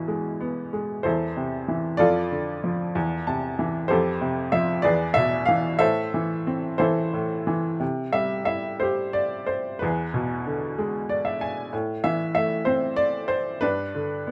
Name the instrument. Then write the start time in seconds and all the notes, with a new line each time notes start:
upright piano
Already playing: E2 B2 E3 A4 D5
0.08 G#3
0.41 B3
0.73 G#3
1.03 E2 E4 A4 C5
1.36 C3
1.68 E3
1.97 F2 F4 A4 D5
2.31 D3
2.64 F3
2.95 E2
3.27 C3 A5
3.59 E3
3.88 F2 G4 A4 C5
4.21 C3
4.52 F3 E5
4.82 E2 G#4 B4 D5
5.14 B2 E5
5.46 E3 F5
5.79 A2 A4 C5 E5
6.14 E3
6.47 C4
6.78 E3 E4 A4 C5
7.13 A2
7.47 E3
7.80 C3
8.13 G3 E5
8.45 E4 E5
8.80 G4 C5
9.13 D5
9.47 C5
9.79 E2 G#4 B4
10.14 B2
10.46 D3
10.78 G#3
11.09 D5
11.25 E5
11.41 G#5
11.73 A2
12.04 E3 E5
12.35 A3 E5
12.65 C4 C5
12.96 D5
13.28 C5
13.61 G2 D4 B4
13.95 D3
14.27 B3